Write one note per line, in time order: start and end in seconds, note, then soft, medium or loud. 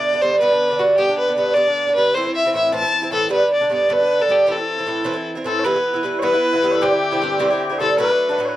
0.00 0.14 D3 soft
0.00 0.13 B3 soft
0.00 0.12 D4 soft
0.00 0.23 D5 medium
0.13 0.21 D3 soft
0.13 0.22 B3 soft
0.13 0.22 D4 soft
0.21 0.39 G2 soft
0.21 0.40 D3 medium
0.21 0.41 B3 medium
0.21 0.41 D4 medium
0.21 0.39 C5 medium
0.40 0.51 G2 medium
0.40 0.51 D3 medium
0.40 0.51 B3 medium
0.40 0.50 D4 medium
0.40 0.81 B4 medium
0.51 0.71 D3 soft
0.51 0.70 B3 soft
0.51 0.69 D4 soft
0.70 0.78 D3 soft
0.70 0.79 B3 soft
0.70 0.79 D4 soft
0.79 0.96 G2 soft
0.79 0.97 D3 medium
0.79 0.97 B3 medium
0.79 0.97 D4 medium
0.79 0.97 F#4 medium
0.98 1.08 G2 medium
0.98 1.09 D3 medium
0.98 1.08 B3 medium
0.98 1.07 D4 medium
0.98 1.17 G4 medium
1.09 1.29 D3 soft
1.09 1.28 B3 soft
1.09 1.27 D4 soft
1.18 1.36 B4 medium
1.28 1.37 D3 soft
1.28 1.37 B3 soft
1.28 1.38 D4 soft
1.37 1.54 G2 soft
1.37 1.55 D3 medium
1.37 1.55 B3 medium
1.37 1.56 D4 soft
1.37 1.56 B4 medium
1.54 1.66 G2 medium
1.54 1.67 D3 medium
1.54 1.66 B3 medium
1.54 1.66 D4 medium
1.54 1.95 D5 medium
1.67 1.88 D3 soft
1.67 1.87 B3 soft
1.67 1.86 D4 soft
1.87 1.96 D3 soft
1.87 1.97 B3 soft
1.87 1.96 D4 soft
1.95 2.14 G2 soft
1.95 2.15 D3 medium
1.95 2.16 B3 medium
1.95 2.16 D4 medium
1.95 2.16 B4 medium
2.14 2.25 A2 medium
2.14 2.26 E3 medium
2.14 2.26 C4 medium
2.14 2.25 E4 medium
2.14 2.34 C5 medium
2.26 2.46 E3 soft
2.26 2.45 C4 soft
2.26 2.44 E4 soft
2.35 2.53 E5 medium
2.45 2.54 E3 soft
2.45 2.54 C4 soft
2.45 2.54 E4 soft
2.54 2.71 A2 soft
2.54 2.71 E3 medium
2.54 2.72 C4 medium
2.54 2.73 E4 medium
2.54 2.72 E5 medium
2.72 2.83 A2 medium
2.72 2.83 E3 medium
2.72 2.82 C4 medium
2.72 2.81 E4 medium
2.72 3.11 A5 loud
2.82 3.02 E3 soft
2.82 3.02 C4 soft
2.82 3.00 E4 medium
3.02 3.11 E3 soft
3.02 3.11 C4 soft
3.02 3.12 E4 medium
3.11 3.28 A2 medium
3.11 3.30 E3 medium
3.11 3.30 C4 medium
3.11 3.30 E4 medium
3.11 3.30 A4 medium
3.29 3.41 G2 medium
3.29 3.41 D3 medium
3.29 3.41 B3 medium
3.29 3.39 D4 medium
3.29 3.51 B4 medium
3.41 3.61 D3 soft
3.41 3.60 B3 soft
3.41 3.59 D4 soft
3.53 3.70 D5 medium
3.61 3.69 D3 soft
3.61 3.70 B3 soft
3.61 3.71 D4 soft
3.69 3.88 G2 soft
3.69 3.88 D3 soft
3.69 3.89 B3 medium
3.69 3.89 D4 medium
3.69 3.94 D5 medium
3.89 4.00 G2 medium
3.89 4.00 D3 medium
3.89 3.98 B3 medium
3.89 3.98 D4 medium
3.89 4.23 B4 medium
3.99 4.21 D3 soft
3.99 4.20 B3 soft
3.99 4.18 D4 soft
4.20 4.28 D3 soft
4.20 4.28 B3 soft
4.20 4.29 D4 soft
4.20 4.33 A4 medium
4.28 4.46 G2 soft
4.28 4.47 D3 soft
4.28 4.47 B3 medium
4.28 4.48 D4 medium
4.28 4.53 G4 medium
4.46 4.58 A2 medium
4.46 4.58 E3 medium
4.46 4.57 C4 medium
4.46 4.56 E4 medium
4.51 5.29 A4 medium
4.57 4.79 E3 soft
4.57 4.78 C4 soft
4.57 4.77 E4 soft
4.78 4.86 E3 soft
4.78 4.87 C4 soft
4.78 4.87 E4 soft
4.86 5.03 A2 soft
4.86 5.04 E3 medium
4.86 5.04 C4 medium
4.86 5.05 E4 medium
5.05 5.16 A2 medium
5.05 5.15 E3 medium
5.05 5.14 C4 medium
5.05 5.13 E4 medium
5.14 5.36 E3 soft
5.14 5.36 C4 soft
5.14 5.34 E4 medium
5.35 5.44 E3 soft
5.35 5.45 C4 medium
5.35 5.45 E4 soft
5.44 5.64 A2 medium
5.44 5.63 E3 medium
5.44 5.65 C4 medium
5.44 5.65 E4 medium
5.44 5.59 A4 medium
5.44 5.67 A4 medium
5.59 5.64 C#5 medium
5.64 5.75 G2 medium
5.64 5.75 E3 medium
5.64 5.75 B3 medium
5.64 5.73 E4 medium
5.64 6.19 B4 medium
5.64 6.04 B4 medium
5.74 5.95 E3 soft
5.74 5.93 B3 soft
5.74 5.92 E4 soft
5.94 6.03 E3 soft
5.94 6.04 B3 soft
5.94 6.04 E4 soft
6.03 6.21 G2 medium
6.03 6.22 E3 medium
6.03 6.22 B3 medium
6.03 6.22 E4 medium
6.19 6.33 G2 medium
6.19 6.33 E3 medium
6.19 6.33 B3 medium
6.19 6.84 B4 medium
6.19 6.24 C#5 medium
6.23 6.32 E4 medium
6.23 6.71 B4 medium
6.33 6.54 E3 soft
6.33 6.53 B3 soft
6.33 6.52 E4 medium
6.53 6.62 E3 soft
6.53 6.62 B3 soft
6.53 6.62 E4 medium
6.62 6.80 G2 medium
6.62 6.82 E3 medium
6.62 6.82 B3 medium
6.62 6.82 E4 medium
6.71 6.82 A4 medium
6.71 6.75 C#5 medium
6.82 6.92 G2 medium
6.82 6.92 D3 medium
6.82 6.92 C4 medium
6.82 6.90 E4 medium
6.82 7.78 G4 medium
6.82 7.61 G4 medium
6.92 7.13 D3 soft
6.92 7.11 C4 soft
6.92 7.10 E4 medium
7.12 7.21 D3 soft
7.12 7.21 C4 medium
7.12 7.21 E4 medium
7.22 7.38 G2 medium
7.22 7.39 D3 medium
7.22 7.39 C4 medium
7.22 7.40 E4 medium
7.40 7.50 G2 medium
7.40 7.50 D3 medium
7.40 7.50 C4 medium
7.40 7.49 E4 medium
7.50 7.70 D3 soft
7.50 7.70 C4 soft
7.50 7.69 E4 medium
7.70 7.79 D3 soft
7.70 7.79 C4 soft
7.70 7.79 E4 soft
7.78 7.98 G2 soft
7.78 7.98 D3 medium
7.78 7.99 C4 medium
7.78 7.99 E4 medium
7.78 7.97 A4 medium
7.97 8.08 A2 medium
7.97 8.09 F#3 medium
7.97 8.09 A3 medium
7.97 8.08 D4 medium
7.97 8.45 B4 medium
7.97 8.35 B4 medium
8.10 8.30 F#3 soft
8.10 8.29 A3 soft
8.10 8.28 D4 soft
8.29 8.38 F#3 soft
8.29 8.38 A3 medium
8.29 8.38 D4 medium
8.38 8.55 A2 medium
8.38 8.55 F#3 soft
8.38 8.56 A3 medium
8.38 8.56 D4 medium
8.45 8.56 B4 soft
8.45 8.49 C#5 soft